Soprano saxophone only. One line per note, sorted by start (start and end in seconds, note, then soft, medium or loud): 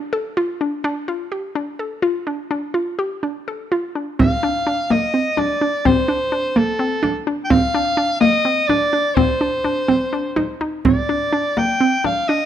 4.20 4.93 F5 medium
4.92 5.40 D#5 medium
5.39 5.88 D5 medium
5.86 6.59 C5 medium
6.58 7.28 A4 medium
7.44 7.52 G5 medium
7.51 8.20 F5 loud
8.21 8.69 D#5 medium
8.68 9.16 D5 medium
9.15 10.60 C5 medium
10.87 11.60 D5 medium
11.58 12.05 G5 loud
12.06 12.30 F5 medium
12.29 12.46 D#5 medium